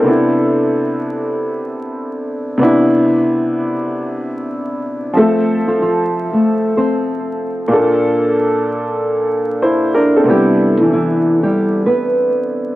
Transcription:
Already playing: C4 A4
0.02 C3 B3 D4
0.08 E4
2.58 C3 B3 D4
2.63 E4
5.13 F3 C4 A4 E5
5.17 A3 A4
5.68 F3 F4
5.82 F3 F4
6.33 A3 A4
6.77 C4 C5
7.68 A#2 A#3 D4
7.74 A4
9.62 E4 C5
9.94 D4 A#4
10.16 C4 A4
10.24 C3 B3 D4
10.29 G3 E4 G4
10.81 E3 E4
10.93 E3 E4
11.43 G3 G4
11.86 B3 B4

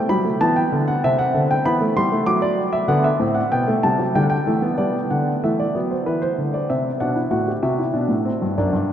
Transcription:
0.09 F#3 G3 B5
0.25 A3
0.40 E3 B3 A5
0.56 G5
0.72 D3
0.88 F#5
1.04 C3 C4 E5
1.19 F#5
1.34 D3
1.51 G5
1.65 E3 B3 B5
1.81 A3
1.96 G3 C6
2.12 A3
2.26 F#3 D6
2.42 D5
2.73 E5
2.88 D3 B3 F#5
3.04 E5
3.20 A2 C4
3.34 F#5
3.52 B2 B3 G5
3.68 A3
3.83 C3 G3 A5
3.99 F#3
4.15 D3 G3 G5
4.22 F#5
4.30 G5
4.47 E3 A3
4.62 B3
4.78 G3 B3 D5
5.10 D3 F#5
5.44 E3 A3 E5
5.60 D5
5.75 F#3 B3
5.91 C5
6.06 E3 B4
6.22 C5
6.38 D3
6.54 D5
6.70 C3 C4 E5
7.00 B2 D4 F#5
7.15 E4
7.31 A2 F#4 F#5
7.48 G4
7.63 C3 F#4 E5
7.79 E4
7.93 B2 D4
8.08 A2
8.25 C4
8.42 G2
8.58 F#2 D4 D5
8.73 G2

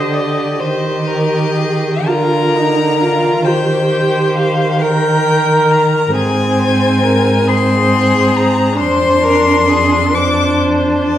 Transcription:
Already playing: D3 G4 C5 D#5
0.14 D5
0.59 D#3 G4 C5 D#5
1.08 A#4
1.56 G#4
2.06 D3 F4 A#4 A#5
2.56 D#4
3.01 F4
3.45 D#3 G4 C5 G5
4.36 F5
4.81 A#4 G5
5.71 A#5
6.15 G#2 C4 G#4 G#5
6.59 C5
7.03 A#4
7.47 C4 G#4 C6
8.36 A#5
8.80 F2 D4 C5 C6
9.24 A#4
9.69 G#4
10.14 D4 C5 D6
11.04 D5

